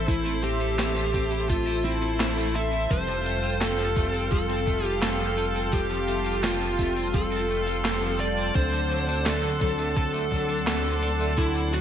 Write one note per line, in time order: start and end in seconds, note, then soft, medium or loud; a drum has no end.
0.00 2.87 A1 medium
0.00 11.81 A4 medium
0.00 2.87 C5 medium
0.00 2.87 E5 medium
0.00 11.81 C6 medium
0.08 1.10 E3 medium
0.08 1.10 A3 medium
0.08 0.14 A3 loud
0.08 1.10 C4 medium
0.08 0.43 E4 loud
0.08 1.10 A4 loud
0.08 kick loud
0.08 closed hi-hat loud
0.08 tambourine soft
0.26 0.31 A3 loud
0.26 closed hi-hat soft
0.26 tambourine soft
0.43 0.52 C4 loud
0.43 1.49 G4 loud
0.43 closed hi-hat medium
0.61 0.70 A4 loud
0.61 closed hi-hat soft
0.61 tambourine medium
0.79 0.88 E4 medium
0.79 snare loud
0.79 clap loud
0.79 closed hi-hat loud
0.79 tambourine soft
0.96 1.02 A3 medium
0.96 closed hi-hat soft
0.96 tambourine soft
1.14 2.86 A3 medium
1.14 1.23 C4 medium
1.14 2.86 C4 medium
1.14 2.86 A4 loud
1.14 kick medium
1.14 open hi-hat medium
1.32 1.41 E4 medium
1.32 closed hi-hat soft
1.32 tambourine medium
1.49 1.55 A3 loud
1.49 1.84 F4 loud
1.49 kick loud
1.49 closed hi-hat loud
1.49 tambourine soft
1.67 1.76 E4 medium
1.67 closed hi-hat soft
1.67 tambourine soft
1.85 1.94 C4 loud
1.85 2.58 E4 loud
2.02 2.11 A4 loud
2.02 closed hi-hat soft
2.02 tambourine medium
2.20 2.29 E4 medium
2.20 snare loud
2.20 clap loud
2.20 closed hi-hat loud
2.20 tambourine soft
2.38 2.51 A3 medium
2.38 closed hi-hat soft
2.38 tambourine soft
2.55 2.61 A4 medium
2.55 2.92 E5 loud
2.55 open hi-hat medium
2.73 2.82 E4 medium
2.73 closed hi-hat soft
2.73 tambourine medium
2.90 8.52 F1 medium
2.90 2.96 F3 loud
2.90 3.92 G3 medium
2.90 3.92 C4 medium
2.90 3.92 F4 medium
2.90 3.92 A4 loud
2.90 3.61 C5 loud
2.90 8.51 F5 medium
2.90 8.51 G5 medium
2.90 kick loud
2.90 closed hi-hat loud
2.90 tambourine soft
3.08 3.14 F3 loud
3.08 closed hi-hat soft
3.08 tambourine soft
3.26 3.35 A3 loud
3.26 closed hi-hat medium
3.44 3.52 F4 loud
3.44 closed hi-hat soft
3.44 tambourine medium
3.61 3.70 C4 medium
3.61 4.31 A4 loud
3.61 snare loud
3.61 clap medium
3.61 closed hi-hat loud
3.61 tambourine medium
3.79 3.84 F3 medium
3.79 closed hi-hat soft
3.79 tambourine soft
3.97 5.69 G3 loud
3.97 4.05 A3 medium
3.97 5.69 C4 medium
3.97 5.69 F4 medium
3.97 5.69 A4 loud
3.97 kick loud
3.97 open hi-hat medium
4.14 4.23 C4 medium
4.14 closed hi-hat soft
4.14 tambourine medium
4.32 4.37 F3 loud
4.32 4.86 A4 loud
4.32 kick loud
4.32 closed hi-hat loud
4.32 tambourine soft
4.50 4.58 C4 medium
4.50 closed hi-hat soft
4.50 tambourine soft
4.67 4.76 A3 loud
4.67 kick medium
4.85 4.94 F4 loud
4.85 5.01 G4 loud
4.85 closed hi-hat soft
4.85 tambourine medium
5.02 5.11 C4 medium
5.02 5.75 A4 medium
5.02 snare loud
5.02 clap medium
5.02 closed hi-hat medium
5.02 tambourine soft
5.20 5.33 F3 medium
5.20 closed hi-hat soft
5.20 tambourine soft
5.38 5.43 F4 medium
5.38 open hi-hat medium
5.55 5.64 C4 medium
5.55 closed hi-hat soft
5.55 tambourine medium
5.73 5.78 F3 loud
5.73 6.75 G3 medium
5.73 6.75 C4 medium
5.73 6.75 F4 medium
5.73 6.40 G4 loud
5.73 6.75 A4 loud
5.73 kick loud
5.73 closed hi-hat medium
5.73 tambourine medium
5.91 5.96 F3 loud
5.91 closed hi-hat soft
5.91 tambourine soft
6.08 6.17 A3 loud
6.08 closed hi-hat medium
6.26 6.35 F4 loud
6.26 closed hi-hat soft
6.26 tambourine medium
6.44 6.53 C4 medium
6.44 7.16 F4 medium
6.44 snare loud
6.44 clap medium
6.44 closed hi-hat medium
6.44 tambourine medium
6.61 6.67 F3 medium
6.61 closed hi-hat soft
6.61 tambourine soft
6.79 8.51 G3 loud
6.79 6.88 A3 medium
6.79 8.51 C4 medium
6.79 8.51 F4 medium
6.79 8.51 A4 loud
6.79 kick medium
6.79 open hi-hat medium
6.97 7.06 C4 medium
6.97 closed hi-hat soft
6.97 tambourine medium
7.14 7.20 F3 loud
7.14 8.20 A4 loud
7.14 kick loud
7.14 closed hi-hat medium
7.14 tambourine medium
7.32 7.41 C4 medium
7.32 closed hi-hat soft
7.32 tambourine soft
7.50 7.58 A3 loud
7.67 7.76 F4 loud
7.67 closed hi-hat soft
7.67 tambourine medium
7.85 7.94 C4 medium
7.85 snare loud
7.85 clap medium
7.85 closed hi-hat medium
7.85 tambourine soft
8.03 8.16 F3 medium
8.03 closed hi-hat soft
8.03 tambourine soft
8.20 8.25 F4 medium
8.20 8.53 D5 loud
8.20 open hi-hat medium
8.38 8.47 C4 medium
8.38 closed hi-hat soft
8.38 tambourine medium
8.55 11.81 D2 medium
8.55 8.61 D3 loud
8.55 9.57 F#3 medium
8.55 9.57 C4 medium
8.55 9.57 D4 medium
8.55 9.57 A4 loud
8.55 9.28 C5 loud
8.55 11.81 D5 medium
8.55 11.81 F#5 medium
8.55 kick loud
8.55 closed hi-hat medium
8.55 tambourine medium
8.73 8.78 D3 loud
8.73 closed hi-hat soft
8.73 tambourine soft
8.91 9.00 F#3 loud
8.91 closed hi-hat medium
9.08 9.17 D4 loud
9.08 closed hi-hat soft
9.08 tambourine medium
9.26 9.35 A3 medium
9.26 9.96 A4 loud
9.26 snare loud
9.26 clap loud
9.26 closed hi-hat medium
9.26 tambourine medium
9.44 9.49 D3 medium
9.44 closed hi-hat soft
9.44 tambourine soft
9.61 11.34 F#3 loud
9.61 9.70 F#3 medium
9.61 11.34 C4 medium
9.61 11.34 D4 medium
9.61 11.34 A4 loud
9.61 kick loud
9.61 open hi-hat medium
9.79 9.88 A3 medium
9.79 closed hi-hat soft
9.79 tambourine medium
9.97 10.02 D3 loud
9.97 10.66 A4 loud
9.97 kick loud
9.97 closed hi-hat medium
9.97 tambourine medium
10.14 10.23 A3 medium
10.14 closed hi-hat soft
10.14 tambourine soft
10.32 10.41 F#3 loud
10.32 kick medium
10.50 10.58 D4 loud
10.50 closed hi-hat soft
10.50 tambourine medium
10.67 10.76 A3 medium
10.67 11.40 A4 medium
10.67 snare loud
10.67 clap medium
10.67 closed hi-hat medium
10.67 tambourine medium
10.85 10.98 D3 medium
10.85 closed hi-hat soft
10.85 tambourine soft
11.02 11.08 D4 medium
11.02 open hi-hat medium
11.20 11.29 A3 medium
11.20 closed hi-hat soft
11.20 tambourine medium
11.38 11.43 D3 loud
11.38 11.81 F#3 medium
11.38 11.81 C4 medium
11.38 11.81 D4 medium
11.38 11.74 E4 loud
11.38 11.81 A4 loud
11.38 kick loud
11.38 closed hi-hat medium
11.38 tambourine medium
11.55 11.61 D3 loud
11.55 closed hi-hat soft
11.55 tambourine soft
11.73 11.81 F#3 loud
11.73 11.81 F#4 medium
11.73 closed hi-hat medium